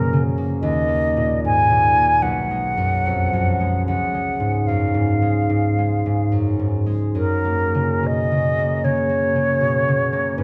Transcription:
0.00 0.66 F#2 soft
0.00 0.30 B2 soft
0.00 0.12 C#3 soft
0.00 0.36 A#3 soft
0.00 0.22 A#4 soft
0.13 0.66 C#3 soft
0.38 0.87 A#3 soft
0.62 2.25 D#2 soft
0.62 1.40 D#5 medium
0.88 1.95 A#3 soft
1.17 1.69 A#2 soft
1.45 1.89 G#2 soft
1.45 2.24 G#5 medium
1.71 2.25 A#2 soft
1.96 2.25 A#3 soft
2.22 3.89 B1 soft
2.22 3.86 F#5 soft
2.51 3.59 G#3 soft
2.77 3.32 F#2 soft
3.06 3.52 F2 soft
3.33 3.90 F#2 soft
3.61 4.13 G#3 soft
3.87 7.20 C#2 soft
3.87 4.68 F#5 soft
4.14 5.21 G#3 soft
4.40 4.93 G#2 soft
4.67 5.15 F#2 soft
4.67 6.33 F5 soft
4.94 5.48 G#2 soft
5.22 5.77 G#3 soft
5.49 6.05 G#2 soft
5.78 6.85 G#3 soft
6.06 6.58 G#2 soft
6.32 6.79 F#2 soft
6.59 7.19 G#2 soft
6.86 7.18 G#3 soft
7.15 10.43 F#2 soft
7.15 8.08 A#4 soft
7.45 8.57 A#3 soft
7.74 8.31 C#3 soft
8.03 8.50 B2 soft
8.03 8.85 D#5 soft
8.32 8.83 C#3 soft
8.59 9.08 A#3 soft
8.84 9.34 C#3 soft
8.84 10.38 C#5 soft
9.09 10.11 A#3 soft
9.36 9.87 C#3 soft
9.61 10.06 B2 soft
9.88 10.43 C#3 soft
10.13 10.43 A#3 soft
10.38 10.43 G#2 soft
10.38 10.43 B4 medium

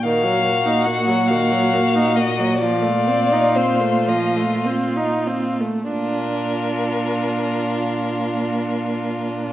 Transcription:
0.03 5.56 A#2 soft
0.03 0.26 D#3 soft
0.03 2.63 F#4 soft
0.03 0.87 F5 medium
0.24 0.46 F#3 soft
0.45 0.67 A#3 soft
0.66 0.88 D#4 soft
0.85 1.09 A#3 soft
0.85 1.30 F#5 medium
1.08 1.32 F#3 soft
1.28 1.54 D#3 soft
1.28 2.17 F5 medium
1.52 1.75 F#3 soft
1.74 1.97 A#3 soft
1.95 2.18 D#4 soft
2.16 2.41 A#3 soft
2.16 2.59 D#5 medium
2.39 2.60 F#3 soft
2.60 2.84 F3 soft
2.60 5.60 F4 soft
2.60 3.57 D5 medium
2.82 3.09 A3 soft
3.08 3.34 C4 soft
3.32 3.58 D#4 soft
3.56 3.82 C4 soft
3.56 4.10 C5 medium
3.81 4.09 A3 soft
4.07 4.38 F3 soft
4.07 4.65 D#5 soft
4.36 4.67 A3 soft
4.65 4.98 C4 soft
4.96 5.29 D#4 soft
5.27 5.62 C4 soft
5.61 5.91 A3 soft
5.91 9.53 A#2 soft
5.91 9.53 D4 soft
5.91 9.53 F4 soft
5.91 9.53 A#4 soft

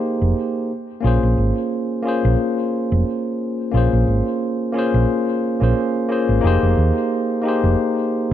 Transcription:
0.00 0.73 A#3 medium
0.00 0.73 D#4 medium
0.00 0.73 G4 medium
0.00 0.72 G#4 medium
0.00 0.72 C5 medium
0.22 0.32 F1 medium
1.01 1.17 A#1 medium
1.01 2.00 A#3 medium
1.01 2.01 C#4 medium
1.01 2.02 F4 medium
1.06 2.03 G#4 medium
1.06 2.03 C5 medium
1.23 1.33 A#1 medium
1.38 1.51 G#1 medium
2.02 3.69 A#3 medium
2.02 3.70 C#4 medium
2.02 3.71 F4 medium
2.07 3.71 G#4 medium
2.07 3.72 C5 medium
2.25 2.35 A#1 medium
2.92 3.02 F1 medium
3.71 3.87 A#1 medium
3.71 4.70 A#3 medium
3.71 4.71 C#4 medium
3.71 4.72 F4 medium
3.76 4.73 G#4 medium
3.76 4.73 C5 medium
3.93 4.03 A#1 medium
4.08 4.21 G#1 medium
4.72 5.56 A#3 medium
4.72 5.57 C#4 medium
4.72 5.58 F4 medium
4.77 5.59 G#4 medium
4.77 5.60 C5 loud
4.94 5.04 A#1 medium
5.60 5.72 A#1 medium
5.60 6.06 A#3 medium
5.60 6.06 C#4 medium
5.60 6.07 F4 medium
5.60 6.07 G#4 medium
5.60 6.08 C5 medium
6.09 6.39 A#3 medium
6.09 6.40 C#4 medium
6.09 6.40 F4 medium
6.09 6.41 G#4 medium
6.09 6.41 C5 medium
6.29 6.39 G#1 medium
6.41 6.57 F1 medium
6.41 7.40 A#3 medium
6.41 7.41 D#4 medium
6.41 7.42 G4 medium
6.45 7.42 G#4 medium
6.45 7.43 C5 loud
6.63 6.73 F1 medium
6.78 6.90 D#2 medium
7.42 8.34 A#3 medium
7.42 8.34 D#4 medium
7.42 8.34 G4 medium
7.47 8.34 G#4 medium
7.47 8.34 C5 medium
7.64 7.74 F1 medium

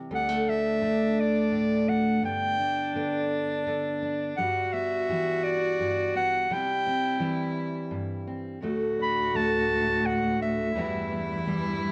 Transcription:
0.00 0.12 C3 medium
0.11 2.23 D2 medium
0.11 0.29 G3 medium
0.11 2.20 D4 medium
0.11 0.50 F#5 medium
0.29 0.81 A3 soft
0.48 1.87 F#4 medium
0.48 1.21 E5 medium
0.81 2.94 D3 medium
0.81 2.20 A3 medium
1.20 1.90 D5 medium
1.52 2.23 A2 medium
1.89 2.20 F#4 medium
1.89 2.24 F#5 medium
2.23 4.32 G2 medium
2.23 2.96 B3 medium
2.23 4.40 D4 loud
2.23 3.27 G5 loud
2.60 4.01 D4 medium
2.96 3.66 D3 medium
2.96 4.33 B3 medium
3.67 4.33 D3 medium
4.02 4.33 D4 medium
4.37 5.78 G2 medium
4.37 5.10 G3 medium
4.37 6.52 F#4 loud
4.37 4.74 F#5 loud
4.73 6.14 B3 medium
4.73 5.45 E5 medium
5.09 6.46 E3 medium
5.09 6.50 G3 medium
5.43 6.14 D5 medium
5.80 6.46 G2 medium
6.15 6.46 B3 medium
6.15 6.54 F#5 medium
6.50 7.21 C3 medium
6.50 7.19 G3 medium
6.50 8.27 E4 medium
6.50 7.58 G5 loud
6.86 8.26 C4 medium
7.20 8.58 E3 medium
7.20 8.62 G3 medium
7.91 8.58 G2 medium
8.27 8.58 C4 medium
8.62 10.40 D2 medium
8.62 10.73 D2 medium
8.62 10.73 A2 medium
8.62 9.34 A3 medium
8.62 10.71 F#4 loud
8.99 10.72 D4 medium
8.99 9.37 B5 loud
9.34 10.75 D3 medium
9.34 10.72 A3 medium
9.34 10.07 A5 loud
10.06 10.41 F#5 medium
10.41 10.75 D2 medium
10.41 11.43 E5 medium
10.75 11.92 E2 medium
10.75 11.92 G2 medium
10.75 11.46 E3 medium
10.75 11.92 E3 medium
10.75 11.48 G3 medium
10.75 11.11 B3 medium
10.75 11.92 E4 loud
10.75 11.92 F#4 medium
11.12 11.92 B3 medium
11.47 11.92 E3 medium
11.47 11.92 G3 medium

